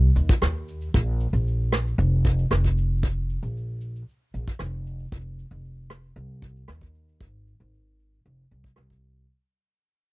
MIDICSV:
0, 0, Header, 1, 3, 480
1, 0, Start_track
1, 0, Tempo, 521739
1, 865, Time_signature, 4, 2, 24, 8
1, 9318, End_track
2, 0, Start_track
2, 0, Title_t, "Upright bass"
2, 0, Program_c, 0, 32
2, 145, Note_on_c, 0, 39, 81
2, 311, Note_off_c, 0, 39, 0
2, 384, Note_on_c, 0, 39, 83
2, 805, Note_off_c, 0, 39, 0
2, 868, Note_on_c, 0, 34, 84
2, 1167, Note_off_c, 0, 34, 0
2, 1224, Note_on_c, 0, 34, 84
2, 1765, Note_off_c, 0, 34, 0
2, 1824, Note_on_c, 0, 29, 94
2, 2245, Note_off_c, 0, 29, 0
2, 2307, Note_on_c, 0, 29, 93
2, 3087, Note_off_c, 0, 29, 0
2, 3152, Note_on_c, 0, 34, 78
2, 3690, Note_off_c, 0, 34, 0
2, 3993, Note_on_c, 0, 34, 72
2, 4072, Note_off_c, 0, 34, 0
2, 4231, Note_on_c, 0, 29, 90
2, 4649, Note_off_c, 0, 29, 0
2, 4711, Note_on_c, 0, 29, 76
2, 5009, Note_off_c, 0, 29, 0
2, 5069, Note_on_c, 0, 29, 77
2, 5608, Note_off_c, 0, 29, 0
2, 5667, Note_on_c, 0, 36, 89
2, 6087, Note_off_c, 0, 36, 0
2, 6149, Note_on_c, 0, 39, 86
2, 6630, Note_on_c, 0, 32, 73
2, 6643, Note_off_c, 0, 39, 0
2, 6928, Note_off_c, 0, 32, 0
2, 6993, Note_on_c, 0, 32, 75
2, 7530, Note_off_c, 0, 32, 0
2, 7595, Note_on_c, 0, 29, 78
2, 7756, Note_off_c, 0, 29, 0
2, 7833, Note_on_c, 0, 36, 80
2, 7995, Note_off_c, 0, 36, 0
2, 8075, Note_on_c, 0, 36, 78
2, 8491, Note_off_c, 0, 36, 0
2, 9318, End_track
3, 0, Start_track
3, 0, Title_t, "Drums"
3, 149, Note_on_c, 9, 69, 66
3, 241, Note_off_c, 9, 69, 0
3, 270, Note_on_c, 9, 36, 100
3, 275, Note_on_c, 9, 69, 63
3, 362, Note_off_c, 9, 36, 0
3, 367, Note_off_c, 9, 69, 0
3, 386, Note_on_c, 9, 37, 62
3, 392, Note_on_c, 9, 69, 45
3, 478, Note_off_c, 9, 37, 0
3, 484, Note_off_c, 9, 69, 0
3, 628, Note_on_c, 9, 69, 82
3, 720, Note_off_c, 9, 69, 0
3, 749, Note_on_c, 9, 69, 55
3, 841, Note_off_c, 9, 69, 0
3, 868, Note_on_c, 9, 36, 99
3, 877, Note_on_c, 9, 69, 41
3, 960, Note_off_c, 9, 36, 0
3, 969, Note_off_c, 9, 69, 0
3, 1109, Note_on_c, 9, 69, 74
3, 1201, Note_off_c, 9, 69, 0
3, 1241, Note_on_c, 9, 69, 53
3, 1333, Note_off_c, 9, 69, 0
3, 1355, Note_on_c, 9, 69, 47
3, 1447, Note_off_c, 9, 69, 0
3, 1586, Note_on_c, 9, 37, 67
3, 1588, Note_on_c, 9, 69, 68
3, 1678, Note_off_c, 9, 37, 0
3, 1680, Note_off_c, 9, 69, 0
3, 1724, Note_on_c, 9, 69, 54
3, 1816, Note_off_c, 9, 69, 0
3, 1842, Note_on_c, 9, 69, 48
3, 1934, Note_off_c, 9, 69, 0
3, 2068, Note_on_c, 9, 36, 79
3, 2077, Note_on_c, 9, 69, 70
3, 2160, Note_off_c, 9, 36, 0
3, 2169, Note_off_c, 9, 69, 0
3, 2193, Note_on_c, 9, 69, 52
3, 2285, Note_off_c, 9, 69, 0
3, 2310, Note_on_c, 9, 37, 64
3, 2321, Note_on_c, 9, 69, 41
3, 2402, Note_off_c, 9, 37, 0
3, 2413, Note_off_c, 9, 69, 0
3, 2433, Note_on_c, 9, 36, 49
3, 2525, Note_off_c, 9, 36, 0
3, 2556, Note_on_c, 9, 69, 84
3, 2648, Note_off_c, 9, 69, 0
3, 2682, Note_on_c, 9, 69, 25
3, 2738, Note_off_c, 9, 69, 0
3, 2738, Note_on_c, 9, 69, 31
3, 2790, Note_on_c, 9, 36, 99
3, 2793, Note_off_c, 9, 69, 0
3, 2793, Note_on_c, 9, 69, 40
3, 2797, Note_off_c, 9, 69, 0
3, 2797, Note_on_c, 9, 69, 33
3, 2856, Note_off_c, 9, 69, 0
3, 2856, Note_on_c, 9, 69, 42
3, 2882, Note_off_c, 9, 36, 0
3, 2948, Note_off_c, 9, 69, 0
3, 3031, Note_on_c, 9, 69, 78
3, 3123, Note_off_c, 9, 69, 0
3, 3155, Note_on_c, 9, 69, 51
3, 3247, Note_off_c, 9, 69, 0
3, 3284, Note_on_c, 9, 69, 39
3, 3376, Note_off_c, 9, 69, 0
3, 3506, Note_on_c, 9, 69, 77
3, 3598, Note_off_c, 9, 69, 0
3, 3641, Note_on_c, 9, 69, 49
3, 3733, Note_off_c, 9, 69, 0
3, 3762, Note_on_c, 9, 69, 39
3, 3854, Note_off_c, 9, 69, 0
3, 3994, Note_on_c, 9, 69, 67
3, 4086, Note_off_c, 9, 69, 0
3, 4118, Note_on_c, 9, 36, 87
3, 4184, Note_on_c, 9, 69, 53
3, 4210, Note_off_c, 9, 36, 0
3, 4225, Note_on_c, 9, 37, 65
3, 4234, Note_off_c, 9, 69, 0
3, 4234, Note_on_c, 9, 69, 41
3, 4317, Note_off_c, 9, 37, 0
3, 4326, Note_off_c, 9, 69, 0
3, 4475, Note_on_c, 9, 69, 79
3, 4567, Note_off_c, 9, 69, 0
3, 4594, Note_on_c, 9, 69, 50
3, 4635, Note_off_c, 9, 69, 0
3, 4635, Note_on_c, 9, 69, 40
3, 4673, Note_off_c, 9, 69, 0
3, 4673, Note_on_c, 9, 69, 34
3, 4712, Note_on_c, 9, 36, 96
3, 4765, Note_off_c, 9, 69, 0
3, 4793, Note_on_c, 9, 69, 17
3, 4804, Note_off_c, 9, 36, 0
3, 4885, Note_off_c, 9, 69, 0
3, 4957, Note_on_c, 9, 69, 76
3, 5049, Note_off_c, 9, 69, 0
3, 5074, Note_on_c, 9, 69, 50
3, 5166, Note_off_c, 9, 69, 0
3, 5195, Note_on_c, 9, 69, 38
3, 5287, Note_off_c, 9, 69, 0
3, 5429, Note_on_c, 9, 37, 69
3, 5441, Note_on_c, 9, 69, 71
3, 5521, Note_off_c, 9, 37, 0
3, 5533, Note_off_c, 9, 69, 0
3, 5555, Note_on_c, 9, 69, 51
3, 5647, Note_off_c, 9, 69, 0
3, 5676, Note_on_c, 9, 69, 45
3, 5768, Note_off_c, 9, 69, 0
3, 5909, Note_on_c, 9, 36, 83
3, 5918, Note_on_c, 9, 69, 73
3, 6001, Note_off_c, 9, 36, 0
3, 6010, Note_off_c, 9, 69, 0
3, 6034, Note_on_c, 9, 69, 50
3, 6126, Note_off_c, 9, 69, 0
3, 6145, Note_on_c, 9, 37, 62
3, 6237, Note_off_c, 9, 37, 0
3, 6268, Note_on_c, 9, 36, 52
3, 6360, Note_off_c, 9, 36, 0
3, 6391, Note_on_c, 9, 69, 74
3, 6483, Note_off_c, 9, 69, 0
3, 6517, Note_on_c, 9, 69, 52
3, 6609, Note_off_c, 9, 69, 0
3, 6629, Note_on_c, 9, 36, 92
3, 6721, Note_off_c, 9, 36, 0
3, 6871, Note_on_c, 9, 69, 76
3, 6963, Note_off_c, 9, 69, 0
3, 6991, Note_on_c, 9, 69, 44
3, 7083, Note_off_c, 9, 69, 0
3, 7124, Note_on_c, 9, 69, 43
3, 7216, Note_off_c, 9, 69, 0
3, 7354, Note_on_c, 9, 69, 74
3, 7446, Note_off_c, 9, 69, 0
3, 7487, Note_on_c, 9, 69, 46
3, 7579, Note_off_c, 9, 69, 0
3, 7606, Note_on_c, 9, 69, 42
3, 7698, Note_off_c, 9, 69, 0
3, 7849, Note_on_c, 9, 69, 71
3, 7941, Note_off_c, 9, 69, 0
3, 7950, Note_on_c, 9, 36, 84
3, 8042, Note_off_c, 9, 36, 0
3, 8060, Note_on_c, 9, 37, 67
3, 8152, Note_off_c, 9, 37, 0
3, 8189, Note_on_c, 9, 36, 55
3, 8281, Note_off_c, 9, 36, 0
3, 8311, Note_on_c, 9, 69, 72
3, 8403, Note_off_c, 9, 69, 0
3, 9318, End_track
0, 0, End_of_file